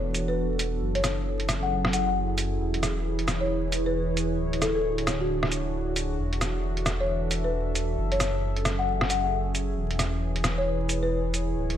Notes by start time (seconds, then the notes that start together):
Already playing: E1 E3 B3 D4 F#4 A4 C#5
0.14 closed hi-hat, cabasa
0.28 B4
0.59 closed hi-hat, cabasa
0.81 F#1 F#3 C#4 E4 G#4
0.95 C#5, closed hi-hat
1.04 cross-stick, closed hi-hat, cabasa
1.40 closed hi-hat
1.49 cross-stick, closed hi-hat, cabasa
1.63 F#5
1.85 cross-stick
1.93 F#5, closed hi-hat, cabasa
2.07 F#5
2.38 closed hi-hat, cabasa
2.60 E1 E3 B4 C#5
2.74 closed hi-hat
2.83 cross-stick, closed hi-hat, cabasa
3.19 closed hi-hat
3.28 cross-stick, closed hi-hat, cabasa
3.41 C#5
3.72 closed hi-hat, cabasa
3.86 B4
4.17 closed hi-hat, cabasa
4.39 D1 D3 D4 F#4
4.53 closed hi-hat
4.62 A4, cross-stick, closed hi-hat, cabasa
4.75 A4
4.98 closed hi-hat
5.07 cross-stick, closed hi-hat, cabasa
5.21 F#4
5.43 cross-stick
5.52 closed hi-hat, cabasa
5.96 closed hi-hat, cabasa
6.18 E1 E3 D4 A4 E5
6.33 closed hi-hat
6.41 cross-stick, closed hi-hat, cabasa
6.77 closed hi-hat
6.86 cross-stick, closed hi-hat, cabasa
7.00 C#5
7.31 closed hi-hat, cabasa
7.44 B4
7.75 closed hi-hat, cabasa
7.98 F#1 F#3 C#4 G#4
8.12 C#5, closed hi-hat
8.20 cross-stick, closed hi-hat, cabasa
8.57 closed hi-hat
8.65 cross-stick, closed hi-hat, cabasa
8.79 F#5
9.01 cross-stick
9.10 F#5, closed hi-hat, cabasa
9.24 F#5
9.55 closed hi-hat, cabasa
9.77 E1 E3 E4 B4 C#5
9.91 closed hi-hat
9.99 cross-stick, closed hi-hat, cabasa
10.36 closed hi-hat
10.44 cross-stick, closed hi-hat, cabasa
10.58 C#5
10.89 closed hi-hat, cabasa
11.03 B4
11.34 closed hi-hat, cabasa
11.56 D1 D3 D4 F#4
11.70 closed hi-hat